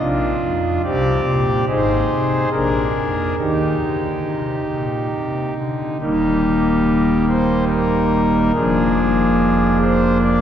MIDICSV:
0, 0, Header, 1, 2, 480
1, 0, Start_track
1, 0, Key_signature, -3, "major"
1, 0, Tempo, 848656
1, 477, Time_signature, 3, 2, 24, 8
1, 1912, Tempo, 872093
1, 3832, Tempo, 843882
1, 5847, End_track
2, 0, Start_track
2, 0, Title_t, "Pipe organ"
2, 0, Program_c, 0, 19
2, 0, Note_on_c, 0, 34, 71
2, 0, Note_on_c, 0, 46, 72
2, 0, Note_on_c, 0, 62, 50
2, 0, Note_on_c, 0, 65, 107
2, 196, Note_off_c, 0, 34, 0
2, 196, Note_off_c, 0, 46, 0
2, 227, Note_on_c, 0, 41, 59
2, 437, Note_off_c, 0, 41, 0
2, 461, Note_off_c, 0, 65, 0
2, 463, Note_off_c, 0, 62, 0
2, 472, Note_on_c, 0, 60, 53
2, 472, Note_on_c, 0, 67, 52
2, 474, Note_on_c, 0, 36, 69
2, 474, Note_on_c, 0, 74, 116
2, 476, Note_on_c, 0, 48, 77
2, 677, Note_off_c, 0, 36, 0
2, 679, Note_off_c, 0, 48, 0
2, 712, Note_on_c, 0, 46, 69
2, 913, Note_off_c, 0, 46, 0
2, 933, Note_off_c, 0, 60, 0
2, 933, Note_off_c, 0, 67, 0
2, 934, Note_off_c, 0, 74, 0
2, 948, Note_on_c, 0, 68, 45
2, 948, Note_on_c, 0, 72, 90
2, 949, Note_on_c, 0, 63, 48
2, 950, Note_on_c, 0, 32, 60
2, 950, Note_on_c, 0, 44, 68
2, 1151, Note_off_c, 0, 32, 0
2, 1151, Note_off_c, 0, 44, 0
2, 1183, Note_on_c, 0, 48, 61
2, 1387, Note_off_c, 0, 48, 0
2, 1410, Note_off_c, 0, 63, 0
2, 1410, Note_off_c, 0, 68, 0
2, 1410, Note_off_c, 0, 72, 0
2, 1423, Note_on_c, 0, 34, 64
2, 1423, Note_on_c, 0, 70, 93
2, 1424, Note_on_c, 0, 62, 41
2, 1425, Note_on_c, 0, 46, 64
2, 1426, Note_on_c, 0, 68, 45
2, 1629, Note_off_c, 0, 34, 0
2, 1630, Note_off_c, 0, 46, 0
2, 1663, Note_on_c, 0, 41, 50
2, 1873, Note_off_c, 0, 41, 0
2, 1895, Note_off_c, 0, 70, 0
2, 1896, Note_off_c, 0, 62, 0
2, 1897, Note_off_c, 0, 68, 0
2, 1909, Note_on_c, 0, 39, 56
2, 1909, Note_on_c, 0, 51, 54
2, 1912, Note_on_c, 0, 67, 80
2, 1913, Note_on_c, 0, 63, 39
2, 2114, Note_off_c, 0, 39, 0
2, 2114, Note_off_c, 0, 51, 0
2, 2153, Note_on_c, 0, 50, 48
2, 2358, Note_off_c, 0, 50, 0
2, 2397, Note_on_c, 0, 48, 45
2, 2602, Note_off_c, 0, 48, 0
2, 2637, Note_on_c, 0, 46, 43
2, 2842, Note_off_c, 0, 46, 0
2, 2877, Note_on_c, 0, 48, 45
2, 3082, Note_off_c, 0, 48, 0
2, 3097, Note_off_c, 0, 67, 0
2, 3118, Note_on_c, 0, 50, 40
2, 3322, Note_off_c, 0, 50, 0
2, 3338, Note_off_c, 0, 63, 0
2, 3356, Note_on_c, 0, 39, 54
2, 3357, Note_on_c, 0, 67, 85
2, 3358, Note_on_c, 0, 58, 47
2, 3359, Note_on_c, 0, 27, 53
2, 3360, Note_on_c, 0, 55, 48
2, 3361, Note_on_c, 0, 63, 42
2, 4047, Note_off_c, 0, 67, 0
2, 4066, Note_on_c, 0, 72, 74
2, 4272, Note_off_c, 0, 72, 0
2, 4302, Note_on_c, 0, 70, 73
2, 4767, Note_off_c, 0, 39, 0
2, 4768, Note_off_c, 0, 27, 0
2, 4768, Note_off_c, 0, 58, 0
2, 4769, Note_off_c, 0, 55, 0
2, 4769, Note_off_c, 0, 63, 0
2, 4772, Note_off_c, 0, 70, 0
2, 4784, Note_on_c, 0, 68, 89
2, 4785, Note_on_c, 0, 29, 57
2, 4785, Note_on_c, 0, 53, 45
2, 4785, Note_on_c, 0, 58, 47
2, 4786, Note_on_c, 0, 62, 46
2, 4788, Note_on_c, 0, 41, 52
2, 5484, Note_off_c, 0, 68, 0
2, 5509, Note_on_c, 0, 72, 82
2, 5713, Note_off_c, 0, 72, 0
2, 5748, Note_on_c, 0, 74, 80
2, 5847, Note_off_c, 0, 29, 0
2, 5847, Note_off_c, 0, 41, 0
2, 5847, Note_off_c, 0, 53, 0
2, 5847, Note_off_c, 0, 58, 0
2, 5847, Note_off_c, 0, 62, 0
2, 5847, Note_off_c, 0, 74, 0
2, 5847, End_track
0, 0, End_of_file